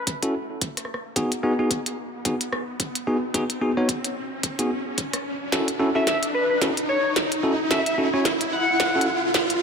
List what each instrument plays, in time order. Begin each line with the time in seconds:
Already playing: riser
0.07 kick, closed hi-hat
0.23 tine electric piano C#4 E4 F#4 A4, closed hi-hat
0.61 kick, closed hi-hat
0.77 cross-stick, closed hi-hat
0.85 cross-stick
0.94 cross-stick
1.16 tine electric piano B3 D#4 F#4 G#4, kick, closed hi-hat
1.32 closed hi-hat
1.43 tine electric piano B3 D#4 F#4 G#4
1.59 tine electric piano B3 D#4 F#4 G#4
1.71 kick, closed hi-hat
1.86 closed hi-hat
2.25 tine electric piano B3 D#4 F#4 G#4, kick, closed hi-hat
2.41 closed hi-hat
2.53 cross-stick
2.80 kick, closed hi-hat
2.95 closed hi-hat
3.07 tine electric piano B3 D#4 F#4 G#4
3.34 tine electric piano B3 D#4 F#4 G#4, kick, closed hi-hat
3.50 closed hi-hat
3.62 tine electric piano B3 D#4 F#4 G#4
3.77 tine electric piano B3 D#4 F#4 C#5
3.89 kick, closed hi-hat
4.04 closed hi-hat
4.43 kick, closed hi-hat
4.59 tine electric piano B3 D#4 F#4 G#4, closed hi-hat
4.98 kick, closed hi-hat
5.13 cross-stick, closed hi-hat
5.52 tine electric piano C#4 E4 F#4 A4, kick, snare, closed hi-hat
5.68 closed hi-hat
5.80 tine electric piano C#4 E4 F#4 A4
5.95 tine electric piano C#4 E4 F#4 A4, analog synth lead E5
6.07 analog synth lead E5, kick, snare, closed hi-hat
6.23 closed hi-hat
6.34 analog synth lead B4
6.50 analog synth lead B4
6.61 tine electric piano C#4 E4 F#4 A4, kick, snare, closed hi-hat
6.77 closed hi-hat
6.89 analog synth lead C#5
7.16 kick, snare, closed hi-hat
7.32 closed hi-hat
7.43 tine electric piano C#4 E4 F#4 A4
7.71 tine electric piano C#4 E4 F#4 A4, analog synth lead E5, kick, snare, closed hi-hat
7.86 analog synth lead E5, closed hi-hat
7.98 tine electric piano C#4 E4 F#4 A4
8.14 tine electric piano C#4 E4 F#4 C#5
8.25 kick, snare, closed hi-hat
8.41 closed hi-hat
8.52 analog synth lead F#5
8.80 kick, snare, closed hi-hat
8.95 tine electric piano C#4 E4 F#4 A4
9.01 closed hi-hat
9.34 kick, snare, closed hi-hat
9.50 closed hi-hat